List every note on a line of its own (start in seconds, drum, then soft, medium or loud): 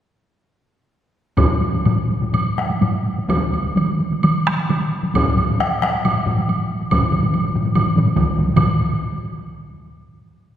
1.37 taiko loud
1.37 taiko low-mid medium
1.37 taiko high medium
1.37 high woodblock soft
1.61 taiko high medium
1.61 high woodblock soft
1.74 taiko high medium
1.85 taiko low-mid medium
1.85 taiko high medium
1.85 high woodblock soft
2.10 taiko high soft
2.22 taiko low-mid medium
2.22 taiko high soft
2.33 taiko low-mid medium
2.33 taiko high medium
2.33 high woodblock soft
2.58 taiko rim medium
2.58 taiko high soft
2.70 taiko high medium
2.82 taiko low-mid medium
2.82 taiko high medium
2.82 high woodblock soft
3.18 taiko high soft
3.29 taiko loud
3.29 taiko mid medium
3.29 taiko high medium
3.29 high woodblock soft
3.53 taiko high medium
3.53 high woodblock soft
3.64 taiko high soft
3.76 taiko mid medium
3.76 taiko high medium
3.76 high woodblock soft
4.00 taiko high soft
4.12 taiko mid medium
4.12 taiko high soft
4.23 taiko mid medium
4.23 taiko high medium
4.23 high woodblock soft
4.47 taiko rim medium
4.47 taiko high soft
4.58 taiko high soft
4.69 taiko mid medium
4.69 taiko high medium
4.69 high woodblock soft
5.03 taiko high soft
5.14 taiko loud
5.14 taiko low-mid medium
5.14 taiko high medium
5.14 high woodblock soft
5.27 taiko low-mid medium
5.37 taiko low-mid medium
5.37 taiko high medium
5.37 high woodblock soft
5.48 taiko low-mid soft
5.48 taiko high soft
5.59 taiko rim medium
5.59 taiko high medium
5.59 high woodblock soft
5.82 taiko rim medium
5.82 taiko high soft
5.94 taiko high soft
6.05 taiko low-mid medium
6.05 taiko high medium
6.05 high woodblock soft
6.26 taiko low-mid medium
6.26 taiko high soft
6.38 taiko high soft
6.48 taiko high medium
6.48 high woodblock soft
6.81 taiko high soft
6.91 taiko medium
6.91 taiko low-mid medium
6.91 taiko mid medium
6.91 taiko high medium
6.91 high woodblock medium
7.02 taiko low-mid medium
7.02 taiko mid medium
7.12 taiko low-mid medium
7.12 taiko mid medium
7.12 taiko high soft
7.12 high woodblock soft
7.22 taiko low-mid soft
7.22 taiko mid medium
7.22 taiko high soft
7.34 taiko high medium
7.34 high woodblock soft
7.44 taiko low-mid medium
7.44 taiko mid medium
7.55 taiko low-mid medium
7.55 taiko mid medium
7.55 taiko high soft
7.65 taiko low-mid medium
7.65 taiko mid medium
7.65 taiko high soft
7.75 taiko low-mid medium
7.75 taiko mid medium
7.75 taiko high medium
7.75 high woodblock soft
7.96 taiko low-mid medium
7.96 taiko mid medium
7.96 taiko high medium
8.06 taiko high medium
8.16 taiko medium
8.16 taiko low-mid medium
8.16 taiko mid medium
8.16 taiko high medium
8.16 high woodblock soft
8.36 taiko medium
8.36 taiko low-mid medium
8.36 taiko mid medium
8.36 taiko high soft
8.48 taiko high medium
8.57 taiko medium
8.57 taiko low-mid medium
8.57 taiko mid medium
8.57 taiko high medium
8.57 high woodblock medium